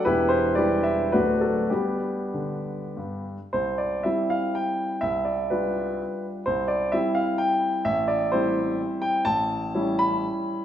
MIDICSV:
0, 0, Header, 1, 2, 480
1, 0, Start_track
1, 0, Key_signature, 1, "major"
1, 0, Tempo, 509338
1, 52, Time_signature, 3, 2, 24, 8
1, 535, Tempo, 560748
1, 1015, Tempo, 584226
1, 1495, Tempo, 628272
1, 2455, Tempo, 561798
1, 2935, Tempo, 511073
1, 2936, Key_signature, 0, "major"
1, 3895, Tempo, 482703
1, 5335, Tempo, 464037
1, 8695, Tempo, 486224
1, 10077, End_track
2, 0, Start_track
2, 0, Title_t, "Grand piano"
2, 0, Program_c, 0, 0
2, 45, Note_on_c, 0, 71, 77
2, 53, Note_on_c, 0, 40, 47
2, 55, Note_on_c, 0, 64, 57
2, 57, Note_on_c, 0, 28, 45
2, 59, Note_on_c, 0, 67, 53
2, 213, Control_c, 0, 64, 127
2, 270, Note_on_c, 0, 72, 70
2, 271, Note_off_c, 0, 64, 0
2, 273, Note_off_c, 0, 67, 0
2, 282, Note_off_c, 0, 71, 0
2, 520, Note_on_c, 0, 74, 64
2, 522, Note_off_c, 0, 40, 0
2, 524, Note_off_c, 0, 28, 0
2, 528, Note_off_c, 0, 72, 0
2, 532, Note_on_c, 0, 71, 53
2, 533, Note_on_c, 0, 52, 34
2, 535, Note_on_c, 0, 67, 49
2, 537, Note_on_c, 0, 55, 34
2, 543, Note_on_c, 0, 62, 38
2, 755, Note_off_c, 0, 71, 0
2, 756, Note_off_c, 0, 67, 0
2, 763, Note_on_c, 0, 76, 62
2, 766, Note_off_c, 0, 74, 0
2, 980, Note_off_c, 0, 52, 0
2, 982, Note_off_c, 0, 55, 0
2, 985, Note_off_c, 0, 62, 0
2, 1009, Note_on_c, 0, 71, 63
2, 1011, Note_off_c, 0, 76, 0
2, 1017, Note_on_c, 0, 62, 51
2, 1018, Note_on_c, 0, 26, 38
2, 1020, Note_on_c, 0, 54, 29
2, 1020, Note_on_c, 0, 66, 47
2, 1022, Note_on_c, 0, 38, 39
2, 1022, Note_on_c, 0, 57, 31
2, 1028, Control_c, 0, 64, 0
2, 1212, Control_c, 0, 64, 127
2, 1237, Note_off_c, 0, 62, 0
2, 1239, Note_off_c, 0, 66, 0
2, 1247, Note_on_c, 0, 69, 45
2, 1250, Note_off_c, 0, 71, 0
2, 1464, Note_off_c, 0, 54, 0
2, 1465, Note_off_c, 0, 57, 0
2, 1482, Note_off_c, 0, 26, 0
2, 1482, Note_on_c, 0, 67, 51
2, 1484, Note_off_c, 0, 38, 0
2, 1492, Note_off_c, 0, 69, 0
2, 1493, Note_on_c, 0, 59, 41
2, 1493, Note_on_c, 0, 62, 43
2, 1494, Note_on_c, 0, 55, 38
2, 1507, Control_c, 0, 64, 0
2, 1686, Control_c, 0, 64, 127
2, 1831, Note_off_c, 0, 55, 0
2, 1975, Note_on_c, 0, 50, 34
2, 2311, Note_off_c, 0, 50, 0
2, 2455, Note_on_c, 0, 43, 33
2, 2470, Control_c, 0, 64, 0
2, 2671, Note_off_c, 0, 62, 0
2, 2672, Note_off_c, 0, 59, 0
2, 2700, Note_off_c, 0, 67, 0
2, 2791, Note_off_c, 0, 43, 0
2, 2933, Note_on_c, 0, 72, 58
2, 2940, Note_on_c, 0, 36, 37
2, 3142, Control_c, 0, 64, 127
2, 3169, Note_on_c, 0, 74, 55
2, 3170, Note_off_c, 0, 72, 0
2, 3406, Note_off_c, 0, 36, 0
2, 3407, Note_on_c, 0, 76, 54
2, 3417, Note_off_c, 0, 74, 0
2, 3419, Note_on_c, 0, 55, 30
2, 3423, Note_on_c, 0, 60, 28
2, 3428, Control_c, 0, 64, 0
2, 3428, Note_on_c, 0, 64, 29
2, 3657, Note_on_c, 0, 77, 59
2, 3659, Note_off_c, 0, 76, 0
2, 3892, Note_off_c, 0, 77, 0
2, 3892, Note_on_c, 0, 79, 60
2, 4323, Note_off_c, 0, 55, 0
2, 4326, Note_off_c, 0, 60, 0
2, 4328, Note_off_c, 0, 64, 0
2, 4348, Note_on_c, 0, 76, 67
2, 4361, Note_off_c, 0, 79, 0
2, 4365, Note_on_c, 0, 36, 41
2, 4542, Control_c, 0, 64, 127
2, 4586, Note_on_c, 0, 74, 48
2, 4587, Note_off_c, 0, 76, 0
2, 4824, Note_off_c, 0, 36, 0
2, 4833, Note_off_c, 0, 74, 0
2, 4839, Note_on_c, 0, 71, 51
2, 4849, Note_on_c, 0, 55, 29
2, 4853, Note_on_c, 0, 62, 31
2, 4853, Note_on_c, 0, 65, 33
2, 5347, Control_c, 0, 64, 0
2, 5580, Note_off_c, 0, 71, 0
2, 5777, Note_off_c, 0, 55, 0
2, 5779, Note_off_c, 0, 62, 0
2, 5779, Note_off_c, 0, 65, 0
2, 5807, Note_on_c, 0, 72, 64
2, 5821, Note_on_c, 0, 36, 46
2, 5974, Control_c, 0, 64, 127
2, 6036, Note_on_c, 0, 74, 62
2, 6045, Note_off_c, 0, 72, 0
2, 6284, Note_on_c, 0, 76, 67
2, 6286, Note_off_c, 0, 36, 0
2, 6290, Note_off_c, 0, 74, 0
2, 6296, Note_on_c, 0, 60, 31
2, 6299, Note_on_c, 0, 55, 33
2, 6305, Note_on_c, 0, 64, 36
2, 6308, Control_c, 0, 64, 0
2, 6520, Note_on_c, 0, 77, 64
2, 6540, Note_off_c, 0, 76, 0
2, 6763, Note_on_c, 0, 79, 71
2, 6776, Note_off_c, 0, 77, 0
2, 7223, Note_off_c, 0, 60, 0
2, 7224, Note_off_c, 0, 55, 0
2, 7228, Note_off_c, 0, 64, 0
2, 7246, Note_on_c, 0, 76, 76
2, 7249, Note_on_c, 0, 33, 47
2, 7251, Note_off_c, 0, 79, 0
2, 7454, Control_c, 0, 64, 127
2, 7483, Note_on_c, 0, 74, 69
2, 7493, Note_off_c, 0, 76, 0
2, 7722, Note_off_c, 0, 33, 0
2, 7730, Note_on_c, 0, 72, 67
2, 7735, Note_off_c, 0, 74, 0
2, 7746, Note_on_c, 0, 55, 34
2, 7749, Note_on_c, 0, 60, 37
2, 7754, Note_on_c, 0, 64, 37
2, 8233, Control_c, 0, 64, 0
2, 8453, Note_on_c, 0, 79, 73
2, 8455, Note_off_c, 0, 72, 0
2, 8655, Note_off_c, 0, 55, 0
2, 8657, Note_off_c, 0, 60, 0
2, 8659, Note_off_c, 0, 64, 0
2, 8691, Note_off_c, 0, 79, 0
2, 8694, Note_on_c, 0, 81, 86
2, 8705, Note_on_c, 0, 33, 49
2, 8893, Control_c, 0, 64, 127
2, 9164, Note_off_c, 0, 33, 0
2, 9184, Note_on_c, 0, 55, 36
2, 9186, Note_on_c, 0, 61, 36
2, 9189, Note_on_c, 0, 64, 39
2, 9423, Note_off_c, 0, 81, 0
2, 9424, Note_on_c, 0, 83, 79
2, 9672, Control_c, 0, 64, 0
2, 10077, Note_off_c, 0, 55, 0
2, 10077, Note_off_c, 0, 61, 0
2, 10077, Note_off_c, 0, 64, 0
2, 10077, Note_off_c, 0, 83, 0
2, 10077, End_track
0, 0, End_of_file